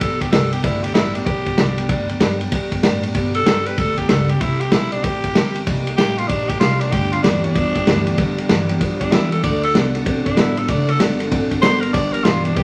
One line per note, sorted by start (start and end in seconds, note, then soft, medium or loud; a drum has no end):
0.00 0.31 B1 medium
0.00 0.20 G3 medium
0.00 0.21 B3 medium
0.00 0.20 D4 medium
0.00 0.19 G4 medium
0.00 0.22 A4 loud
0.00 kick loud
0.00 ride loud
0.21 0.31 G3 soft
0.21 0.31 B3 soft
0.21 0.31 D4 soft
0.21 0.32 G4 medium
0.21 0.31 G4 medium
0.21 kick medium
0.21 ride medium
0.31 0.62 C2 medium
0.31 0.52 G2 medium
0.31 0.52 D3 medium
0.31 0.52 G3 medium
0.31 0.52 B3 medium
0.31 0.51 D4 medium
0.31 0.50 G4 medium
0.31 0.54 A4 medium
0.31 snare loud
0.31 ride medium
0.51 0.62 G3 soft
0.51 0.62 B3 soft
0.51 0.63 D4 medium
0.51 0.63 G4 soft
0.51 0.63 G4 medium
0.51 ride medium
0.62 0.94 D2 medium
0.62 0.83 G2 medium
0.62 0.83 D3 medium
0.62 0.84 G3 medium
0.62 0.83 B3 medium
0.62 0.83 D4 medium
0.62 0.85 E4 medium
0.62 0.81 G4 medium
0.62 kick loud
0.62 ride medium
0.83 0.93 G3 soft
0.83 0.94 B3 soft
0.83 0.94 D4 soft
0.83 0.95 G4 medium
0.83 0.93 G4 loud
0.83 ride medium
0.94 1.25 A1 loud
0.94 1.14 G2 medium
0.94 1.15 D3 medium
0.94 1.15 G3 medium
0.94 1.15 B3 medium
0.94 1.14 D4 medium
0.94 1.17 E4 loud
0.94 1.13 G4 medium
0.94 snare loud
0.94 ride medium
1.14 1.24 G3 soft
1.14 1.25 B3 soft
1.14 1.27 D4 medium
1.14 1.26 D4 medium
1.14 1.26 G4 medium
1.14 ride medium
1.26 1.57 B1 medium
1.26 1.46 G3 medium
1.26 1.45 B3 medium
1.26 1.45 D4 medium
1.26 1.87 G4 loud
1.26 1.44 G4 medium
1.26 kick loud
1.26 ride medium
1.45 1.57 G3 medium
1.45 1.57 B3 medium
1.45 1.58 D4 medium
1.45 1.57 G4 medium
1.45 kick medium
1.45 ride medium
1.57 1.88 C2 medium
1.57 1.78 G2 medium
1.57 1.78 D3 medium
1.57 1.78 G3 medium
1.57 1.77 B3 medium
1.57 1.76 D4 medium
1.57 1.75 G4 medium
1.57 snare loud
1.57 ride medium
1.77 1.88 G3 soft
1.77 1.88 B3 medium
1.77 1.88 D4 medium
1.77 1.89 G4 medium
1.77 ride medium
1.88 2.19 D2 medium
1.88 2.09 G2 medium
1.88 2.09 D3 medium
1.88 2.09 G3 medium
1.88 2.09 B3 medium
1.88 2.08 D4 loud
1.88 2.07 G4 medium
1.88 kick loud
1.88 ride medium
2.09 2.19 G3 medium
2.09 2.19 B3 medium
2.09 2.20 D4 medium
2.09 2.21 G4 medium
2.09 ride medium
2.20 2.51 F#2 loud
2.20 2.40 G2 medium
2.20 2.40 D3 medium
2.20 2.40 G3 loud
2.20 2.39 B3 loud
2.20 2.38 D4 medium
2.20 2.38 G4 loud
2.20 snare loud
2.20 ride medium
2.39 2.50 G3 soft
2.39 2.51 B3 medium
2.39 2.52 D4 medium
2.39 2.51 G4 medium
2.39 ride medium
2.51 2.82 G2 medium
2.51 2.72 G3 medium
2.51 2.71 B3 medium
2.51 2.71 D4 medium
2.51 2.70 G4 medium
2.51 kick loud
2.51 ride medium
2.71 2.82 G3 medium
2.71 2.82 B3 medium
2.71 2.83 D4 medium
2.71 2.83 G4 medium
2.71 kick medium
2.71 ride medium
2.82 3.03 G2 medium
2.82 3.14 A2 medium
2.82 3.03 D3 medium
2.82 3.03 G3 loud
2.82 3.03 B3 medium
2.82 3.02 D4 loud
2.82 3.01 G4 loud
2.82 snare loud
2.82 ride medium
3.03 3.13 G3 medium
3.03 3.14 B3 medium
3.03 3.14 D4 medium
3.03 3.14 G4 medium
3.03 ride medium
3.14 3.34 G2 medium
3.14 3.46 B2 medium
3.14 3.35 D3 medium
3.14 3.35 G3 medium
3.14 3.35 B3 medium
3.14 3.34 D4 medium
3.14 3.33 G4 medium
3.14 kick loud
3.14 ride medium
3.34 3.45 G3 soft
3.34 3.45 B3 soft
3.34 3.46 D4 medium
3.34 3.46 G4 medium
3.34 3.68 A4 loud
3.34 ride medium
3.46 3.66 G2 medium
3.46 3.77 G2 loud
3.46 3.66 D3 medium
3.46 3.66 G3 medium
3.46 3.66 B3 medium
3.46 3.65 D4 medium
3.46 3.65 G4 medium
3.46 snare loud
3.46 ride medium
3.66 3.76 G3 soft
3.66 3.77 B3 soft
3.66 3.78 D4 medium
3.66 3.78 G4 medium
3.66 3.80 B4 medium
3.66 ride medium
3.77 4.08 D2 medium
3.77 3.98 G3 medium
3.77 3.98 B3 medium
3.77 3.97 D4 medium
3.77 3.96 G4 medium
3.77 3.99 A4 loud
3.77 kick loud
3.77 ride medium
3.97 4.09 G3 soft
3.97 4.10 B3 soft
3.97 4.10 D4 medium
3.97 4.09 G4 medium
3.97 4.10 G4 medium
3.97 kick medium
3.97 ride medium
4.09 4.40 C#2 medium
4.09 4.29 G2 medium
4.09 4.30 D3 medium
4.09 4.30 G3 medium
4.09 4.30 B3 medium
4.09 4.30 D4 medium
4.09 4.29 G4 medium
4.09 4.31 A4 medium
4.09 snare loud
4.09 ride medium
4.29 4.41 G3 soft
4.29 4.42 B3 soft
4.29 4.42 D4 medium
4.29 4.43 G4 medium
4.29 4.41 G4 medium
4.29 ride medium
4.41 4.71 C2 medium
4.41 4.61 C3 medium
4.41 4.61 G3 medium
4.41 4.62 C4 medium
4.41 4.62 E4 loud
4.41 4.61 E4 medium
4.41 4.59 G4 medium
4.41 kick loud
4.41 ride medium
4.60 4.72 C4 soft
4.60 4.73 E4 soft
4.60 4.72 G4 medium
4.60 4.74 G4 medium
4.60 ride medium
4.72 5.03 B1 loud
4.72 4.92 C3 medium
4.72 4.93 G3 medium
4.72 4.93 C4 medium
4.72 4.94 E4 loud
4.72 4.93 E4 medium
4.72 4.92 G4 medium
4.72 snare loud
4.72 ride medium
4.92 5.03 C4 soft
4.92 5.05 D4 loud
4.92 5.04 E4 medium
4.92 5.04 G4 medium
4.92 ride medium
5.03 5.34 A1 medium
5.03 5.24 G3 medium
5.03 5.24 C4 medium
5.03 5.24 E4 medium
5.03 5.65 G4 loud
5.03 5.22 G4 medium
5.03 kick loud
5.03 ride medium
5.24 5.35 C4 soft
5.24 5.36 E4 medium
5.24 5.35 G4 medium
5.24 kick medium
5.24 ride medium
5.35 5.66 G1 loud
5.35 5.55 C3 medium
5.35 5.56 G3 medium
5.35 5.56 C4 medium
5.35 5.55 E4 medium
5.35 5.54 G4 medium
5.35 snare loud
5.35 ride medium
5.55 5.66 C4 soft
5.55 5.67 E4 medium
5.55 5.67 G4 medium
5.55 ride medium
5.66 5.97 C2 medium
5.66 5.86 C3 medium
5.66 5.87 G3 medium
5.66 5.87 A#3 medium
5.66 5.86 D#4 medium
5.66 5.84 G4 medium
5.66 kick loud
5.66 ride loud
5.85 5.97 A#3 medium
5.85 5.97 D#4 medium
5.85 5.97 G4 medium
5.85 ride medium
5.97 6.29 A1 medium
5.97 6.18 C3 medium
5.97 6.18 G3 medium
5.97 6.18 A#3 medium
5.97 6.17 D#4 medium
5.97 6.20 G4 loud
5.97 6.16 G4 medium
5.97 snare loud
5.97 ride medium
6.17 6.28 A#3 soft
6.17 6.29 D#4 soft
6.17 6.30 F4 loud
6.17 6.29 G4 medium
6.17 ride medium
6.28 6.60 A#1 medium
6.28 6.49 G3 medium
6.28 6.49 A#3 medium
6.28 6.50 D4 loud
6.28 6.50 D#4 medium
6.28 6.48 G4 medium
6.28 kick loud
6.28 ride medium
6.49 6.61 A#3 soft
6.49 6.61 D#4 soft
6.49 6.59 G4 medium
6.49 6.61 G4 medium
6.49 kick medium
6.49 ride medium
6.60 6.91 C2 loud
6.60 6.81 C3 medium
6.60 6.81 G3 medium
6.60 6.81 A#3 medium
6.60 6.81 D#4 medium
6.60 6.82 F4 loud
6.60 6.80 G4 medium
6.60 snare loud
6.60 ride medium
6.81 6.92 A#3 soft
6.81 6.94 D4 loud
6.81 6.93 D#4 soft
6.81 6.92 G4 medium
6.81 ride medium
6.92 7.23 D2 medium
6.92 7.12 G2 medium
6.92 7.21 G2 medium
6.92 7.12 D3 medium
6.92 7.22 D3 loud
6.92 7.13 G3 medium
6.92 7.12 B3 medium
6.92 7.11 D4 medium
6.92 7.14 G4 loud
6.92 7.11 G4 medium
6.92 kick loud
6.92 ride medium
7.12 7.22 G3 soft
7.12 7.23 B3 medium
7.12 7.23 D4 soft
7.12 7.22 F4 loud
7.12 7.24 G4 medium
7.12 ride medium
7.23 7.54 D#2 loud
7.23 7.44 G2 medium
7.23 7.42 G2 medium
7.23 7.44 D3 medium
7.23 7.42 E3 medium
7.23 7.44 G3 medium
7.23 7.44 B3 medium
7.23 7.43 D4 loud
7.23 7.42 G4 medium
7.23 snare loud
7.23 ride medium
7.44 7.54 G2 medium
7.44 7.54 E3 medium
7.44 7.53 G3 soft
7.44 7.54 B3 soft
7.44 7.55 D4 medium
7.44 8.35 D4 loud
7.44 7.55 G4 medium
7.44 ride medium
7.54 7.86 E2 medium
7.54 7.84 G2 medium
7.54 7.85 F3 medium
7.54 7.75 G3 medium
7.54 7.75 B3 medium
7.54 7.75 D4 medium
7.54 7.74 G4 medium
7.54 kick loud
7.54 ride medium
7.75 7.86 G3 soft
7.75 7.86 B3 soft
7.75 7.87 D4 soft
7.75 7.87 G4 medium
7.75 kick medium
7.75 ride medium
7.86 8.17 D2 loud
7.86 8.06 G2 medium
7.86 8.05 G2 medium
7.86 8.07 D3 medium
7.86 8.05 E3 loud
7.86 8.07 G3 loud
7.86 8.07 B3 medium
7.86 8.06 D4 loud
7.86 8.05 G4 loud
7.86 snare loud
7.86 ride medium
8.06 8.17 G2 medium
8.06 8.17 E3 medium
8.06 8.18 G3 medium
8.06 8.18 B3 medium
8.06 8.18 D4 medium
8.06 8.18 G4 medium
8.06 ride medium
8.18 8.38 G2 medium
8.18 8.49 G2 medium
8.18 8.47 G2 medium
8.18 8.38 D3 medium
8.18 8.48 D3 medium
8.18 8.38 G3 medium
8.18 8.38 B3 loud
8.18 8.38 D4 medium
8.18 8.37 G4 medium
8.18 kick loud
8.18 ride medium
8.38 8.49 G3 soft
8.38 8.49 B3 medium
8.38 8.50 D4 medium
8.38 8.50 G4 medium
8.38 ride medium
8.49 8.80 F#2 loud
8.49 8.67 G2 medium
8.49 8.69 G2 medium
8.49 8.70 D3 medium
8.49 8.68 E3 medium
8.49 8.70 G3 medium
8.49 8.69 B3 loud
8.49 8.69 D4 medium
8.49 8.68 G4 loud
8.49 snare loud
8.49 ride medium
8.69 8.79 G2 medium
8.69 8.80 E3 medium
8.69 8.80 G3 medium
8.69 8.81 B3 medium
8.69 8.81 D4 medium
8.69 8.81 G4 medium
8.69 ride medium
8.80 9.10 G2 medium
8.80 9.11 G2 medium
8.80 9.10 F3 medium
8.80 9.01 G3 medium
8.80 9.01 B3 medium
8.80 9.00 D4 medium
8.80 9.00 G4 medium
8.80 kick loud
8.80 ride medium
9.00 9.12 G3 soft
9.00 9.12 B3 soft
9.00 9.13 D4 loud
9.00 9.12 D4 medium
9.00 9.12 G4 medium
9.00 kick medium
9.00 ride medium
9.11 9.30 E2 medium
9.11 9.32 G2 medium
9.11 9.30 G2 medium
9.11 9.32 D3 medium
9.11 9.30 E3 loud
9.11 9.32 G3 medium
9.11 9.31 B3 medium
9.11 9.31 D4 medium
9.11 9.31 E4 loud
9.11 9.30 G4 medium
9.11 snare loud
9.11 ride medium
9.31 9.42 G2 medium
9.31 9.43 E3 medium
9.31 9.43 G3 soft
9.31 9.43 B3 soft
9.31 9.42 D4 medium
9.31 9.43 G4 soft
9.31 9.43 A4 medium
9.31 muted upright bass stroke soft
9.31 ride medium
9.43 9.74 D2 medium
9.43 9.63 D3 medium
9.43 9.73 D3 medium
9.43 9.63 A3 medium
9.43 9.73 A3 medium
9.43 9.63 D4 medium
9.43 9.63 F#4 medium
9.43 9.62 A4 medium
9.43 9.63 D5 loud
9.43 kick loud
9.43 ride medium
9.63 9.74 D4 soft
9.63 9.74 F#4 medium
9.63 9.75 A4 medium
9.63 9.75 A4 loud
9.63 ride medium
9.74 10.05 C2 medium
9.74 9.94 D3 medium
9.74 9.93 D3 medium
9.74 9.94 A3 medium
9.74 9.93 B3 loud
9.74 9.94 D4 loud
9.74 9.93 F#4 medium
9.74 9.92 A4 medium
9.74 snare loud
9.74 ride medium
9.93 10.04 D3 medium
9.93 10.05 B3 medium
9.93 10.05 D4 medium
9.93 10.05 F#4 medium
9.93 10.05 A4 medium
9.93 ride medium
10.05 10.36 B1 medium
10.05 10.35 D3 medium
10.05 10.25 A3 medium
10.05 10.35 C4 medium
10.05 10.26 D4 medium
10.05 10.25 F#4 medium
10.05 10.23 A4 medium
10.05 kick loud
10.05 ride medium
10.24 10.40 D4 loud
10.24 10.36 D4 soft
10.24 10.37 F#4 medium
10.24 10.37 A4 soft
10.24 kick medium
10.24 ride medium
10.37 10.68 A1 medium
10.37 10.57 D3 medium
10.37 10.55 D3 medium
10.37 10.57 A3 medium
10.37 10.55 B3 medium
10.37 10.57 D4 medium
10.37 10.60 E4 medium
10.37 10.56 F#4 medium
10.37 10.55 A4 medium
10.37 snare loud
10.37 ride medium
10.56 10.67 D3 medium
10.56 10.68 B3 medium
10.56 10.68 D4 soft
10.56 10.68 F#4 medium
10.56 10.68 A4 medium
10.56 10.71 A4 medium
10.56 ride medium
10.68 10.99 F#1 medium
10.68 10.88 D3 medium
10.68 10.98 D3 medium
10.68 10.88 A3 medium
10.68 10.98 A3 medium
10.68 10.89 D4 medium
10.68 10.88 F#4 medium
10.68 10.86 A4 medium
10.68 10.91 D5 loud
10.68 kick loud
10.68 ride medium
10.87 10.99 D4 soft
10.87 10.99 F#4 medium
10.87 10.99 A4 medium
10.87 11.00 A4 loud
10.87 ride medium
10.99 11.31 G1 loud
10.99 11.19 D3 medium
10.99 11.18 D3 medium
10.99 11.20 A3 medium
10.99 11.18 B3 loud
10.99 11.20 D4 medium
10.99 11.19 F#4 medium
10.99 11.17 A4 medium
10.99 snare loud
10.99 ride medium
11.19 11.30 D3 medium
11.19 11.31 B3 loud
11.19 11.30 D4 soft
11.19 11.31 F#4 medium
11.19 11.31 A4 medium
11.19 ride medium
11.30 11.50 A1 medium
11.30 11.60 D3 medium
11.30 11.51 A3 medium
11.30 11.60 C4 medium
11.30 11.50 D4 medium
11.30 11.49 F#4 medium
11.30 11.48 A4 medium
11.30 kick loud
11.30 ride medium
11.50 11.61 D4 medium
11.50 11.61 F#4 medium
11.50 11.62 A4 medium
11.50 muted upright bass stroke soft
11.50 kick medium
11.50 ride medium
11.61 11.93 G#1 medium
11.61 11.82 D3 medium
11.61 11.81 D3 medium
11.61 11.82 A3 medium
11.61 11.81 B3 loud
11.61 11.82 D4 medium
11.61 11.81 F#4 medium
11.61 11.80 A4 medium
11.61 11.82 C5 loud
11.61 snare loud
11.61 ride medium
11.81 11.93 D3 medium
11.81 11.93 B3 medium
11.81 11.94 D4 soft
11.81 11.94 F#4 medium
11.81 11.93 A4 medium
11.81 11.93 A#4 medium
11.81 ride medium
11.93 12.24 G1 medium
11.93 12.13 G2 medium
11.93 12.23 G2 medium
11.93 12.13 D3 medium
11.93 12.23 D3 loud
11.93 12.14 G3 medium
11.93 12.13 B3 medium
11.93 12.12 D4 medium
11.93 12.12 G4 medium
11.93 12.14 D5 loud
11.93 kick loud
11.93 ride medium
12.13 12.24 G3 soft
12.13 12.24 B3 soft
12.13 12.25 D4 medium
12.13 12.25 G4 medium
12.13 12.26 A#4 loud
12.13 ride medium
12.24 12.55 B1 loud
12.24 12.45 G2 medium
12.24 12.43 G2 medium
12.24 12.45 D3 medium
12.24 12.43 E3 medium
12.24 12.45 G3 medium
12.24 12.44 B3 medium
12.24 12.44 D4 medium
12.24 12.44 F4 loud
12.24 12.43 G4 medium
12.24 snare loud
12.24 ride medium
12.44 12.55 G2 medium
12.44 12.56 E3 medium
12.44 12.55 G3 soft
12.44 12.56 B3 medium
12.44 12.58 D4 medium
12.44 12.57 D4 medium
12.44 12.56 G4 medium
12.44 ride medium
12.56 12.63 C2 medium
12.56 12.63 C3 medium
12.56 12.63 G3 medium
12.56 12.63 C4 medium
12.56 12.63 E4 medium
12.56 12.63 G4 loud
12.56 12.63 G4 medium
12.56 kick loud
12.56 ride medium